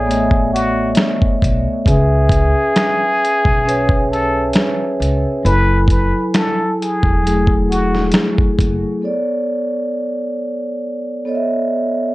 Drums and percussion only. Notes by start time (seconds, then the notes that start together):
0.11 closed hi-hat
0.31 kick
0.56 closed hi-hat
0.95 finger snap, snare, closed hi-hat
1.22 kick
1.42 kick, closed hi-hat
1.86 kick, closed hi-hat
2.30 kick, closed hi-hat
2.76 finger snap, snare, closed hi-hat
3.25 closed hi-hat
3.45 kick
3.69 closed hi-hat
3.89 kick
4.13 closed hi-hat
4.53 finger snap, snare, closed hi-hat
5.02 closed hi-hat
5.46 closed hi-hat
5.88 kick, closed hi-hat
6.34 finger snap, snare, closed hi-hat
6.82 closed hi-hat
7.03 kick
7.27 closed hi-hat
7.47 kick
7.72 closed hi-hat
7.95 snare
8.12 finger snap, snare, closed hi-hat
8.38 kick
8.58 kick, closed hi-hat